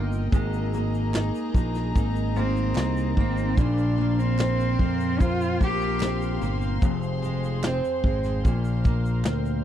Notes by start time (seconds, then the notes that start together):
Already playing: G1 D#3 A#3 D#4 F4 A#4 D#5 G5
0.12 shaker
0.32 G#1 G#3 G#4 A#5, kick, shaker
0.53 shaker
0.74 A#3, shaker
0.94 shaker
1.14 D#4, snare, clap, shaker
1.35 shaker
1.54 A#1 A#3, kick, shaker
1.75 snare, shaker
1.95 G#1 D#4, kick, shaker
2.16 shaker
2.36 A#3 C4, shaker
2.56 shaker
2.75 C2 D#4, snare, clap, shaker
2.97 shaker
3.17 G#1 A#3 C4, kick
3.37 shaker
3.57 A#1 A#2 D4 A#4 C5 F5 C6, kick, shaker
3.78 shaker
3.98 A#3
4.19 C4, shaker
4.39 C4, snare, clap, shaker
4.60 shaker
4.79 F2 A#3, kick
5.00 shaker
5.20 C4 F4, kick, shaker
5.41 shaker
5.60 A#1 A#3 G4, kick, shaker
5.81 shaker
6.00 C4, snare, clap, shaker
6.22 shaker
6.41 G1 A#3, shaker
6.62 shaker
6.82 F1 F2 G#4 C5, kick, shaker
7.02 shaker
7.22 G#3, shaker
7.44 shaker
7.63 C4, snare, clap, shaker
7.84 shaker
8.03 G#1 G#3, kick
8.24 snare, shaker
8.44 A#1 A#2 A#4, kick, shaker
8.65 shaker
8.84 A#3, kick, shaker
9.06 shaker
9.25 D2 C4, snare, clap, shaker
9.45 shaker